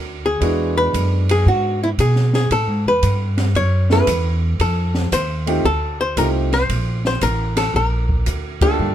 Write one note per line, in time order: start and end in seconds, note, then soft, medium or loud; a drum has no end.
0.00 0.40 D2 medium
0.00 0.25 A#4 medium
0.26 0.77 G#4 medium
0.40 0.92 E2 medium
0.40 1.88 G#3 medium
0.40 1.88 B3 medium
0.40 1.88 D4 medium
0.40 1.89 E4 medium
0.40 1.89 F#4 medium
0.40 kick soft
0.40 ride medium
0.78 1.31 B4 medium
0.93 1.44 F#2 medium
0.93 kick soft
0.93 hi-hat pedal soft
0.93 ride medium
1.29 1.46 G#4 medium
1.29 ride medium
1.46 1.97 G#2 medium
1.46 1.80 F#4 medium
1.46 kick soft
1.83 1.88 E4 medium
1.98 2.49 B2 medium
1.98 2.32 G#4 medium
1.98 kick soft
1.98 hi-hat pedal soft
1.98 ride medium
2.16 snare soft
2.33 2.52 G#4 medium
2.33 snare soft
2.51 2.67 A2 medium
2.51 2.88 A4 medium
2.51 kick soft
2.51 ride medium
2.67 2.85 G#2 soft
2.85 3.02 E2 medium
2.85 3.53 B4 medium
3.02 3.54 G2 medium
3.02 kick soft
3.02 hi-hat pedal medium
3.02 ride medium
3.38 snare soft
3.38 ride soft
3.55 4.06 F#2 medium
3.55 3.89 C#5 medium
3.55 kick soft
3.55 ride medium
3.90 4.06 A3 medium
3.90 4.06 B3 medium
3.90 4.07 C#4 medium
3.90 4.07 E4 medium
3.90 4.07 G#4 medium
3.90 4.61 B4 medium
3.90 snare soft
4.07 4.58 E2 medium
4.07 kick soft
4.07 hi-hat pedal medium
4.07 ride medium
4.59 5.11 F2 medium
4.59 5.09 A4 medium
4.59 kick soft
4.59 ride medium
4.95 snare soft
5.12 5.63 D#2 medium
5.12 5.65 C5 medium
5.12 kick soft
5.12 hi-hat pedal medium
5.12 ride medium
5.47 5.63 A3 medium
5.47 5.63 C4 medium
5.47 5.63 D#4 medium
5.47 5.63 F4 medium
5.47 5.64 G4 medium
5.47 ride medium
5.65 6.16 D2 medium
5.65 5.98 A4 medium
5.65 kick soft
6.01 6.18 C5 medium
6.17 6.68 C2 medium
6.17 6.49 A3 medium
6.17 6.49 C4 soft
6.17 6.49 D#4 soft
6.17 6.50 F4 soft
6.17 6.50 G4 medium
6.17 6.27 A#4 medium
6.17 kick soft
6.17 hi-hat pedal medium
6.17 ride medium
6.52 7.02 C5 medium
6.52 snare soft
6.52 ride soft
6.69 7.20 A#1 medium
6.69 kick soft
6.69 ride medium
7.05 7.22 C5 medium
7.05 snare soft
7.21 7.73 A1 medium
7.21 7.55 A#4 medium
7.21 kick soft
7.21 hi-hat pedal medium
7.21 ride medium
7.56 7.73 A4 medium
7.56 snare soft
7.56 ride medium
7.74 8.25 A#1 medium
7.74 8.62 A#4 medium
7.74 kick soft
8.09 kick medium
8.26 8.77 D2 medium
8.26 kick soft
8.26 hi-hat pedal medium
8.26 ride medium
8.61 8.95 A3 medium
8.61 8.95 A#3 medium
8.61 8.95 D4 medium
8.61 8.95 F4 medium
8.61 8.95 G4 medium
8.61 8.95 A4 medium
8.61 kick medium
8.61 ride medium
8.79 8.95 G2 medium